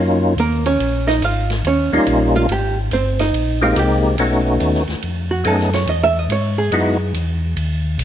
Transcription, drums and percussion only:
0.38 hi-hat pedal, ride
0.66 ride
0.80 ride
1.09 snare
1.22 hi-hat pedal, ride
1.50 snare, ride
1.65 ride
2.07 hi-hat pedal, ride
2.49 ride
2.91 hi-hat pedal, ride
3.19 snare, ride
3.34 ride
3.76 hi-hat pedal, ride
4.18 ride
4.60 hi-hat pedal, ride
4.75 snare
4.88 snare, ride
5.03 ride
5.45 hi-hat pedal, ride
5.59 snare
5.73 snare, ride
5.87 ride
6.30 hi-hat pedal, ride
6.72 ride
7.14 hi-hat pedal, ride
7.57 ride
7.99 hi-hat pedal, ride

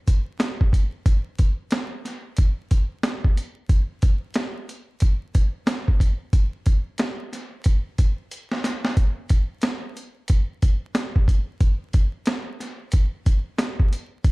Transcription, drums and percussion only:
0.07 kick, closed hi-hat
0.40 snare, closed hi-hat
0.61 kick
0.73 kick, closed hi-hat
1.06 kick, closed hi-hat
1.39 kick, closed hi-hat
1.71 snare, closed hi-hat
2.05 snare, closed hi-hat
2.37 kick, closed hi-hat
2.71 kick, closed hi-hat
3.03 snare, closed hi-hat
3.24 kick
3.37 closed hi-hat
3.69 kick, closed hi-hat
4.02 kick, closed hi-hat
4.34 snare, closed hi-hat
4.69 closed hi-hat
5.00 kick, closed hi-hat
5.35 kick, closed hi-hat
5.67 snare, closed hi-hat
5.88 kick
6.00 kick, closed hi-hat
6.33 kick, closed hi-hat
6.66 kick, closed hi-hat
6.98 snare, closed hi-hat
7.33 snare, closed hi-hat
7.64 kick, closed hi-hat
7.98 kick, closed hi-hat
8.31 closed hi-hat
8.52 snare
8.64 snare, closed hi-hat
8.85 snare
8.97 kick, closed hi-hat
9.29 kick, closed hi-hat
9.62 snare, closed hi-hat
9.97 closed hi-hat
10.28 kick, closed hi-hat
10.62 kick, closed hi-hat
10.95 snare, closed hi-hat
11.16 kick
11.28 kick, closed hi-hat
11.61 kick, closed hi-hat
11.93 kick, closed hi-hat
12.26 snare, closed hi-hat
12.60 snare, closed hi-hat
12.92 kick, closed hi-hat
13.26 kick, closed hi-hat
13.59 snare, closed hi-hat
13.80 kick
13.93 closed hi-hat
14.24 kick, closed hi-hat

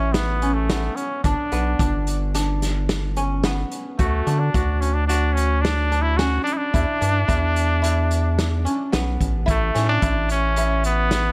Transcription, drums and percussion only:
0.14 snare, closed hi-hat
0.42 closed hi-hat
0.70 snare, closed hi-hat
0.97 closed hi-hat
1.24 kick, closed hi-hat
1.52 closed hi-hat
1.79 kick, closed hi-hat
2.07 closed hi-hat
2.34 snare, closed hi-hat
2.62 snare, closed hi-hat
2.89 snare, closed hi-hat
3.16 closed hi-hat
3.44 snare, closed hi-hat
3.72 closed hi-hat
3.99 kick, closed hi-hat
4.27 closed hi-hat
4.54 kick, closed hi-hat
4.82 closed hi-hat
5.09 closed hi-hat
5.37 closed hi-hat
5.65 snare, closed hi-hat
5.92 closed hi-hat
6.19 snare, closed hi-hat
6.47 closed hi-hat
6.74 kick, closed hi-hat
7.02 closed hi-hat
7.29 kick, closed hi-hat
7.56 closed hi-hat
7.84 closed hi-hat
8.11 closed hi-hat
8.39 snare, closed hi-hat
8.66 closed hi-hat
8.93 snare, closed hi-hat
9.21 kick, closed hi-hat
9.48 kick, closed hi-hat
9.75 snare, closed hi-hat
10.02 kick, closed hi-hat
10.29 closed hi-hat
10.56 closed hi-hat
10.84 closed hi-hat
11.11 snare, closed hi-hat

